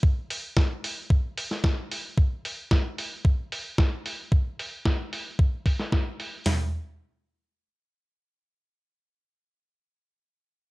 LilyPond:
\new DrumStaff \with { instrumentName = "Drums" } \drummode { \time 4/4 \tempo 4 = 112 bd8 hho8 <bd sn>8 hho8 bd8 hho16 sn16 <bd sn>8 hho8 | bd8 hho8 <bd sn>8 hho8 bd8 hho8 <bd sn>8 hho8 | bd8 hho8 <bd sn>8 hho8 bd8 <hho bd>16 sn16 <bd sn>8 hho8 | <hho sn tomfh>4 r4 r4 r4 |
r4 r4 r4 r4 | }